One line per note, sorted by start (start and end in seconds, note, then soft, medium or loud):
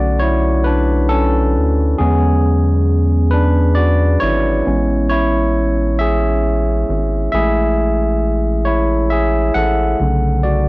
0.00 1.57 B1 loud
0.00 1.99 D3 medium
0.00 2.00 A3 soft
0.00 1.11 C#4 medium
0.00 0.18 F#4 medium
0.00 1.09 A4 medium
0.00 0.21 D5 medium
0.00 2.00 F#5 medium
0.19 0.63 E4 medium
0.19 0.66 C#5 loud
0.64 1.07 D4 medium
0.64 1.10 B4 loud
1.09 1.95 C#4 medium
1.09 2.01 A4 loud
1.56 1.95 D2 medium
1.98 4.17 E2 loud
1.98 3.28 D3 medium
1.98 3.28 F#3 medium
1.98 3.28 G#3 medium
1.98 3.29 B3 medium
1.98 3.28 C#4 medium
1.98 3.36 G#4 medium
3.31 3.74 D4 medium
3.31 3.77 B4 loud
3.75 4.18 F#4 medium
3.75 4.21 D5 loud
4.20 4.62 G#1 medium
4.20 5.06 E4 medium
4.20 5.08 C#5 loud
4.65 6.84 A1 loud
4.65 5.94 G#3 medium
4.65 5.95 B3 medium
4.65 5.95 C#4 medium
5.09 5.95 E4 medium
5.09 6.01 C#5 medium
5.99 7.29 G#4 medium
5.99 7.31 E5 loud
6.89 7.29 G#1 loud
7.32 9.51 A1 loud
7.32 8.62 G#3 medium
7.32 8.62 A3 soft
7.32 8.62 E4 medium
7.32 8.62 G#4 medium
7.32 8.69 E5 medium
8.65 9.07 E4 medium
8.65 9.11 C#5 medium
9.10 9.52 G#4 medium
9.10 9.55 E5 medium
9.54 9.95 A1 medium
9.54 10.40 A4 medium
9.54 10.39 F#5 loud
9.99 10.69 B1 loud
9.99 10.69 C#3 medium
9.99 10.69 D3 medium
9.99 10.69 A3 soft
10.43 10.69 F#4 medium
10.43 10.69 D5 medium